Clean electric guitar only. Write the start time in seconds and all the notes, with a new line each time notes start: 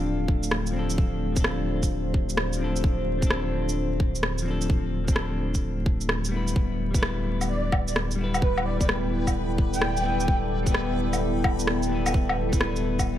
Already playing: F3 C4 D4 A4
0.71 F3 C4
0.76 D4 A4
1.32 F3 C4
1.38 D4 A4
2.56 F3 C4
2.61 D4 A4
3.18 F3 C4
3.24 D4 A4
4.42 F3 C4
4.48 D4 A4
5.05 F3 C4
5.10 D4 A4
6.29 G3 B3
6.34 E4 B4
6.91 G3 B3
6.96 E4 B4
8.16 G3 B3
8.21 E4 B4
8.77 G3 B3
8.82 E4 B4
10.01 G3 B3
10.06 E4 B4
10.63 G3 B3
10.68 E4 B4
11.87 G3 B3
11.92 E4 B4
12.49 G3 B3
12.54 E4 B4